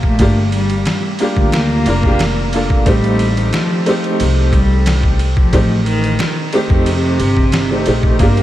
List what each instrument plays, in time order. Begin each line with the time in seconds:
Already playing: upright bass A#1, upright piano A#3 D4 F4 G4
0.03 cello A3, kick
0.19 upright bass G1, upright piano A#3 D4 F4 G4, kick, ride
0.52 cello G3, ride
0.70 ride
0.86 snare, ride
1.19 upright piano A#3 D4 F4 G4, ride
1.37 upright bass D2, kick
1.52 cello A#3, snare, ride
1.86 upright bass F1, upright piano A#3 D4 F4 A#4, ride
2.03 upright piano A#3 D4 F4 G4, kick
2.19 snare, ride
2.53 upright piano A#3 D4 F4 A4, ride
2.70 kick
2.86 upright bass A1, cello G3, upright piano A3 C4 D#4 G4, kick, ride
3.04 ride
3.19 ride
3.37 ride
3.53 cello F3, snare, ride
3.86 upright piano A3 C4 D#4 G4, ride
4.04 ride
4.20 upright bass C2, ride
4.53 cello G3, kick, ride
4.86 snare, ride
5.04 kick
5.19 ride
5.37 cello F3, kick
5.53 upright bass A1, upright piano A3 C4 D#4 G4, kick, ride
5.86 cello D#3, ride
6.04 ride
6.19 snare, ride
6.53 upright piano A3 C4 D#4 G4, ride
6.70 upright bass F2, kick
6.86 cello C3, ride
7.20 upright bass G1, ride
7.37 kick
7.52 snare, ride
7.70 upright piano A3 C4 D#4 G4
7.86 upright bass A#1, upright piano A3 C4 D#4 G4, ride
8.03 kick
8.18 upright bass G1, upright piano A#3 D4 F4, cello A#3, string machine G4 D5 F5 A#5, kick, ride
8.23 upright piano G4
8.37 ride